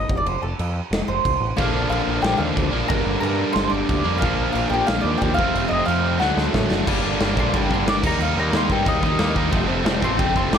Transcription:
Already playing: mandolin D#5 D#6
0.09 picked electric bass F1, kick
0.17 mandolin D5 D6
0.26 picked electric bass F1, mandolin C5 C6, crash
0.42 picked electric bass F1, mandolin A4 A5
0.59 picked electric bass F2, crash
0.91 picked electric bass F1, snare, crash
1.08 picked electric bass F1, mandolin C5 C6
1.25 picked electric bass C2, kick, crash
1.40 picked electric bass A1
1.57 picked electric bass A#1, distorted electric guitar A#2 D3 F3 A#3 D4, mandolin F5 F6, kick, crash
1.74 picked electric bass A#1
1.90 picked electric bass A#1, mandolin F5 F6, crash
2.07 picked electric bass A#1
2.22 picked electric bass A#1, mandolin G4 G5, snare, crash
2.38 picked electric bass D#2, mandolin F5 F6
2.57 picked electric bass D2, kick, crash
2.71 picked electric bass A#1, distorted electric guitar A#2 D3 F3 A#3 D4
2.88 picked electric bass G1, distorted electric guitar G2 D3 G3 A#3 D4, mandolin A#4 A#5, kick, crash
3.05 picked electric bass G1
3.21 picked electric bass G2, mandolin A#4 A#5, crash
3.53 picked electric bass G1, mandolin C6, snare, crash
3.57 mandolin C5
3.70 picked electric bass G1, mandolin D5
3.74 mandolin D6
3.89 picked electric bass D2, kick, crash
4.04 picked electric bass F2, distorted electric guitar G2 D3 G3 A#3 D4
4.18 distorted electric guitar A#2, mandolin F5 F6, kick, crash
4.22 picked electric bass A#1, distorted electric guitar F3 A#3 D4
4.38 picked electric bass A#1
4.53 picked electric bass A#1, mandolin F5 F6, crash
4.70 picked electric bass A#1, mandolin G5
4.74 mandolin G4
4.87 picked electric bass A#1, mandolin F5 F6, snare, crash
5.01 picked electric bass D#2, mandolin D5 D6
5.18 mandolin G4 G5, crash
5.22 picked electric bass D#2, kick
5.34 distorted electric guitar F2, mandolin F5 F6
5.39 picked electric bass F1, distorted electric guitar C3 F3 A3 C4, kick
5.54 picked electric bass F1, crash
5.68 picked electric bass F1, mandolin D#5 D#6
5.86 picked electric bass F2, mandolin F5 F6, crash
6.19 picked electric bass D2, distorted electric guitar D3 F#3 A3 D4, mandolin F#5 F#6, snare
6.37 picked electric bass D2, snare
6.54 picked electric bass A2, kick, snare
6.71 picked electric bass F#1, snare
6.86 picked electric bass G1, distorted electric guitar G2 D3 G3 A#3 D4, kick, crash
7.04 picked electric bass G1, distorted electric guitar G2 D3 G3 A#3 D4
7.20 picked electric bass G1, distorted electric guitar G2 D3 G3 A#3 D4, snare, crash
7.36 picked electric bass A#1, distorted electric guitar G2 D3 G3 A#3 D4, mandolin C6, kick
7.53 picked electric bass G1, distorted electric guitar G2 D3 G3 A#3 D4, mandolin G5, kick, crash
7.70 picked electric bass G1, distorted electric guitar G2 D3 G3 A#3 D4, kick
7.74 mandolin C6
7.86 picked electric bass G1, distorted electric guitar G2 D3 G3 A#3 D4, mandolin D6, snare, crash
8.02 picked electric bass D#2, distorted electric guitar D#3 G3 A#3 D#4, kick, crash
8.07 mandolin A#5
8.19 picked electric bass D#2, distorted electric guitar D#3 G3 A#3 D#4, mandolin F5, crash
8.37 picked electric bass D#2, distorted electric guitar D#3 G3 A#3 D#4, mandolin A#5
8.52 picked electric bass D#2, distorted electric guitar D#3 G3 A#3 D#4, snare, crash
8.57 mandolin C6
8.70 picked electric bass G2, distorted electric guitar D#3 G3 A#3 D#4, mandolin G5, kick
8.85 picked electric bass D#2, distorted electric guitar D#3 G3 A#3 D#4, mandolin D#5, kick, crash
9.02 picked electric bass D#2, distorted electric guitar D#3 G3 A#3 D#4, mandolin D#5, kick
9.18 picked electric bass D#2, distorted electric guitar D#3 G3 A#3 D#4, snare, crash
9.35 picked electric bass D#2, distorted electric guitar D#3 G3 A#3 D#4, kick
9.51 picked electric bass F1, distorted electric guitar F2 C3 F3 A3 C4, kick, crash
9.67 picked electric bass F1, distorted electric guitar F2 C3 F3 A3 C4
9.84 picked electric bass F1, distorted electric guitar F2 C3 F3 A3 C4, snare, crash
10.01 picked electric bass A1, distorted electric guitar F2 C3 F3 A3 C4, mandolin C6, kick
10.18 picked electric bass F1, distorted electric guitar F2 C3 F3 A3 C4, mandolin G5, kick, crash
10.35 picked electric bass F1, distorted electric guitar F2 C3 F3 A3 C4, mandolin C6, kick
10.51 picked electric bass F1, distorted electric guitar F2 C3 F3 A3 C4, mandolin D6, snare, crash

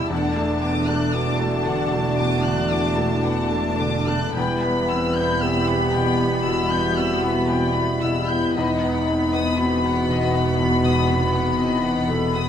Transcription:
Already playing: felt piano B2 G3 A3, alto flute E4, violin section E6
0.10 double bass section E1, felt piano E2, cello section E2, french horn section A3 D4, viola section D4, alto flute D4, violin section F#5 A5
0.35 felt piano A3, violin section A5
0.62 felt piano B3, violin section D6
0.88 felt piano A3, violin section F#6
1.14 felt piano B3, alto flute F#4, violin section D6
1.38 felt piano A3, violin section A5
1.65 felt piano D3, violin section F#5
1.92 felt piano A3, violin section A5
2.18 felt piano E2, violin section D6
2.44 felt piano D3, violin section F#6
2.70 felt piano E3, violin section D6
2.96 felt piano A3, violin section A5
3.23 felt piano B3, violin section F#5
3.50 felt piano A3, violin section A5
3.78 felt piano D3, violin section D6
4.07 felt piano A3, violin section F#6
4.34 double bass section E1, felt piano E2, cello section E2, viola section B3, alto flute B4, violin section G5 B5
4.40 french horn section G3 E4
4.62 felt piano B3, violin section B5
4.89 felt piano C4, violin section E6
5.16 felt piano B3, violin section G6
5.42 felt piano C4, alto flute G4, violin section E6
5.68 felt piano B3, violin section B5
5.94 felt piano B2, violin section G5
6.18 felt piano B3, violin section B5
6.44 felt piano B2, alto flute F#4, violin section E6
6.71 felt piano B3, violin section G6
6.97 felt piano C4, violin section E6
7.22 felt piano B3, violin section B5
7.49 felt piano C4, violin section G5
7.74 felt piano B3, violin section B5
8.01 felt piano B2, alto flute E4, violin section E6
8.28 felt piano B3, violin section G6
8.54 double bass section E1, cello section E2, felt piano E2, viola section B3, french horn section B3 D#4, alto flute D#4, violin section D#5 B5
8.81 felt piano B3, violin section F#5
9.07 felt piano C4, violin section B5
9.33 felt piano B3, violin section D#6
9.58 felt piano C4, alto flute F#4, violin section B5
9.83 felt piano B3, violin section F#5
10.09 felt piano B2, violin section D#5
10.33 felt piano B3, violin section F#5
10.60 felt piano E2, violin section B5
10.84 felt piano B2, violin section D#6
11.09 felt piano C3, violin section B5
11.34 felt piano B3, violin section F#5
11.59 felt piano C4, violin section D#5
11.84 felt piano B3, violin section F#5
12.08 felt piano B2, alto flute A4, violin section B5
12.34 felt piano B3, violin section D#6

